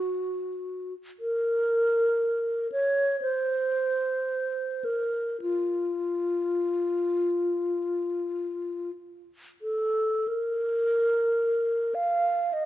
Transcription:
0, 0, Header, 1, 2, 480
1, 0, Start_track
1, 0, Key_signature, -5, "minor"
1, 0, Tempo, 1008403
1, 571, Time_signature, 4, 2, 24, 8
1, 1529, Tempo, 1065719
1, 2009, Tempo, 1129944
1, 2969, Tempo, 1167315
1, 3449, Tempo, 1237113
1, 3929, Tempo, 1330377
1, 4409, Tempo, 1115242
1, 5434, End_track
2, 0, Start_track
2, 0, Title_t, "Alto flute"
2, 0, Program_c, 0, 73
2, 0, Note_on_c, 0, 66, 46
2, 445, Note_off_c, 0, 66, 0
2, 569, Note_on_c, 0, 70, 58
2, 1274, Note_off_c, 0, 70, 0
2, 1294, Note_on_c, 0, 73, 53
2, 1525, Note_off_c, 0, 73, 0
2, 1530, Note_on_c, 0, 72, 53
2, 2249, Note_on_c, 0, 70, 47
2, 2256, Note_off_c, 0, 72, 0
2, 2489, Note_off_c, 0, 70, 0
2, 2491, Note_on_c, 0, 65, 43
2, 3914, Note_off_c, 0, 65, 0
2, 4172, Note_on_c, 0, 69, 39
2, 4410, Note_on_c, 0, 70, 50
2, 4417, Note_off_c, 0, 69, 0
2, 5129, Note_on_c, 0, 77, 49
2, 5135, Note_off_c, 0, 70, 0
2, 5380, Note_on_c, 0, 75, 54
2, 5387, Note_off_c, 0, 77, 0
2, 5434, Note_off_c, 0, 75, 0
2, 5434, End_track
0, 0, End_of_file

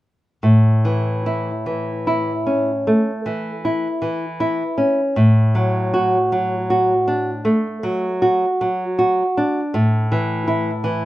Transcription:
0, 0, Header, 1, 2, 480
1, 0, Start_track
1, 0, Key_signature, 3, "major"
1, 0, Tempo, 819672
1, 250, Time_signature, 12, 3, 24, 8
1, 1207, Tempo, 789474
1, 2167, Tempo, 762389
1, 6007, Tempo, 735294
1, 6863, End_track
2, 0, Start_track
2, 0, Title_t, "Nylon-string guitar"
2, 0, Program_c, 0, 24
2, 252, Note_on_c, 0, 45, 40
2, 497, Note_on_c, 0, 52, 31
2, 739, Note_on_c, 0, 64, 34
2, 878, Note_off_c, 0, 52, 0
2, 973, Note_on_c, 0, 52, 30
2, 1116, Note_off_c, 0, 64, 0
2, 1213, Note_on_c, 0, 64, 31
2, 1355, Note_off_c, 0, 52, 0
2, 1452, Note_on_c, 0, 61, 31
2, 1602, Note_off_c, 0, 64, 0
2, 1672, Note_off_c, 0, 45, 0
2, 1700, Note_on_c, 0, 57, 31
2, 1839, Note_off_c, 0, 61, 0
2, 1934, Note_on_c, 0, 52, 33
2, 2076, Note_off_c, 0, 57, 0
2, 2172, Note_on_c, 0, 64, 31
2, 2309, Note_off_c, 0, 52, 0
2, 2404, Note_on_c, 0, 52, 32
2, 2549, Note_off_c, 0, 64, 0
2, 2647, Note_on_c, 0, 64, 36
2, 2784, Note_off_c, 0, 52, 0
2, 2882, Note_on_c, 0, 61, 33
2, 3024, Note_off_c, 0, 64, 0
2, 3119, Note_off_c, 0, 61, 0
2, 3125, Note_on_c, 0, 45, 45
2, 3370, Note_on_c, 0, 54, 37
2, 3613, Note_on_c, 0, 66, 38
2, 3756, Note_off_c, 0, 54, 0
2, 3855, Note_on_c, 0, 54, 37
2, 3996, Note_off_c, 0, 66, 0
2, 4094, Note_on_c, 0, 66, 37
2, 4233, Note_off_c, 0, 54, 0
2, 4330, Note_on_c, 0, 62, 37
2, 4467, Note_off_c, 0, 66, 0
2, 4536, Note_off_c, 0, 45, 0
2, 4564, Note_on_c, 0, 57, 38
2, 4701, Note_off_c, 0, 62, 0
2, 4807, Note_on_c, 0, 54, 38
2, 4942, Note_off_c, 0, 57, 0
2, 5050, Note_on_c, 0, 66, 38
2, 5191, Note_off_c, 0, 54, 0
2, 5296, Note_on_c, 0, 54, 37
2, 5437, Note_off_c, 0, 66, 0
2, 5533, Note_on_c, 0, 66, 41
2, 5680, Note_off_c, 0, 54, 0
2, 5777, Note_on_c, 0, 62, 39
2, 5915, Note_off_c, 0, 66, 0
2, 6007, Note_on_c, 0, 45, 50
2, 6010, Note_off_c, 0, 62, 0
2, 6253, Note_on_c, 0, 52, 39
2, 6488, Note_on_c, 0, 64, 38
2, 6633, Note_off_c, 0, 52, 0
2, 6725, Note_on_c, 0, 52, 37
2, 6863, Note_off_c, 0, 45, 0
2, 6863, Note_off_c, 0, 52, 0
2, 6863, Note_off_c, 0, 64, 0
2, 6863, End_track
0, 0, End_of_file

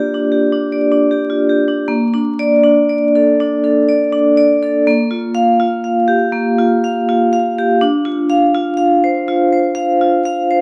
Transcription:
0, 0, Header, 1, 2, 480
1, 0, Start_track
1, 0, Key_signature, -2, "major"
1, 0, Tempo, 765306
1, 1190, Time_signature, 4, 2, 24, 8
1, 1660, Tempo, 736196
1, 6854, End_track
2, 0, Start_track
2, 0, Title_t, "Vibraphone"
2, 0, Program_c, 0, 11
2, 0, Control_c, 0, 64, 127
2, 0, Note_on_c, 0, 58, 73
2, 0, Note_on_c, 0, 62, 57
2, 0, Note_on_c, 0, 65, 49
2, 0, Note_on_c, 0, 67, 57
2, 0, Note_on_c, 0, 74, 73
2, 90, Note_off_c, 0, 62, 0
2, 90, Note_on_c, 0, 62, 51
2, 168, Note_off_c, 0, 67, 0
2, 200, Note_on_c, 0, 67, 56
2, 202, Note_off_c, 0, 58, 0
2, 289, Note_off_c, 0, 62, 0
2, 330, Note_on_c, 0, 62, 56
2, 405, Note_off_c, 0, 67, 0
2, 454, Note_off_c, 0, 74, 0
2, 454, Note_on_c, 0, 74, 61
2, 530, Note_off_c, 0, 62, 0
2, 574, Note_on_c, 0, 62, 59
2, 653, Note_off_c, 0, 74, 0
2, 696, Note_on_c, 0, 67, 60
2, 773, Note_off_c, 0, 62, 0
2, 814, Note_off_c, 0, 65, 0
2, 814, Note_on_c, 0, 65, 52
2, 895, Note_off_c, 0, 67, 0
2, 937, Note_on_c, 0, 67, 56
2, 942, Note_off_c, 0, 65, 0
2, 1054, Note_on_c, 0, 62, 56
2, 1136, Note_off_c, 0, 67, 0
2, 1179, Note_on_c, 0, 58, 78
2, 1182, Note_off_c, 0, 62, 0
2, 1203, Control_c, 0, 64, 0
2, 1311, Control_c, 0, 64, 127
2, 1340, Note_on_c, 0, 62, 64
2, 1500, Note_on_c, 0, 74, 85
2, 1595, Note_off_c, 0, 62, 0
2, 1652, Note_on_c, 0, 62, 66
2, 1756, Note_off_c, 0, 74, 0
2, 1821, Note_on_c, 0, 74, 63
2, 1915, Note_off_c, 0, 62, 0
2, 1991, Note_on_c, 0, 69, 62
2, 2079, Note_off_c, 0, 74, 0
2, 2112, Note_off_c, 0, 58, 0
2, 2152, Note_on_c, 0, 62, 66
2, 2243, Note_off_c, 0, 69, 0
2, 2306, Note_on_c, 0, 69, 62
2, 2403, Note_off_c, 0, 62, 0
2, 2468, Note_on_c, 0, 74, 67
2, 2561, Note_off_c, 0, 69, 0
2, 2624, Note_on_c, 0, 62, 66
2, 2723, Note_off_c, 0, 74, 0
2, 2786, Note_on_c, 0, 74, 70
2, 2882, Note_off_c, 0, 62, 0
2, 2951, Note_on_c, 0, 69, 62
2, 3043, Note_off_c, 0, 74, 0
2, 3109, Note_off_c, 0, 69, 0
2, 3109, Note_on_c, 0, 58, 76
2, 3118, Control_c, 0, 64, 0
2, 3244, Control_c, 0, 64, 127
2, 3265, Note_on_c, 0, 65, 65
2, 3420, Note_on_c, 0, 77, 88
2, 3522, Note_off_c, 0, 65, 0
2, 3584, Note_on_c, 0, 65, 71
2, 3679, Note_off_c, 0, 77, 0
2, 3743, Note_on_c, 0, 77, 65
2, 3841, Note_off_c, 0, 65, 0
2, 3896, Note_on_c, 0, 67, 69
2, 4001, Note_off_c, 0, 77, 0
2, 4042, Note_off_c, 0, 58, 0
2, 4057, Note_on_c, 0, 58, 74
2, 4158, Note_off_c, 0, 67, 0
2, 4228, Note_on_c, 0, 65, 66
2, 4394, Note_on_c, 0, 77, 74
2, 4484, Note_off_c, 0, 65, 0
2, 4556, Note_on_c, 0, 65, 64
2, 4647, Note_off_c, 0, 77, 0
2, 4713, Note_on_c, 0, 77, 74
2, 4808, Note_off_c, 0, 65, 0
2, 4880, Note_on_c, 0, 67, 67
2, 4966, Note_off_c, 0, 77, 0
2, 4997, Note_off_c, 0, 58, 0
2, 5029, Note_on_c, 0, 62, 86
2, 5034, Note_off_c, 0, 67, 0
2, 5041, Control_c, 0, 64, 0
2, 5136, Control_c, 0, 64, 127
2, 5184, Note_on_c, 0, 65, 66
2, 5343, Note_on_c, 0, 77, 92
2, 5442, Note_off_c, 0, 65, 0
2, 5505, Note_on_c, 0, 65, 73
2, 5602, Note_off_c, 0, 77, 0
2, 5653, Note_on_c, 0, 77, 75
2, 5762, Note_off_c, 0, 65, 0
2, 5827, Note_on_c, 0, 72, 77
2, 5915, Note_off_c, 0, 77, 0
2, 5961, Note_off_c, 0, 62, 0
2, 5985, Note_on_c, 0, 65, 72
2, 6082, Note_off_c, 0, 72, 0
2, 6145, Note_on_c, 0, 72, 71
2, 6240, Note_off_c, 0, 65, 0
2, 6290, Note_on_c, 0, 77, 82
2, 6400, Note_off_c, 0, 72, 0
2, 6463, Note_on_c, 0, 65, 72
2, 6552, Note_off_c, 0, 77, 0
2, 6619, Note_on_c, 0, 77, 75
2, 6719, Note_off_c, 0, 65, 0
2, 6784, Note_on_c, 0, 72, 71
2, 6854, Note_off_c, 0, 72, 0
2, 6854, Note_off_c, 0, 77, 0
2, 6854, End_track
0, 0, End_of_file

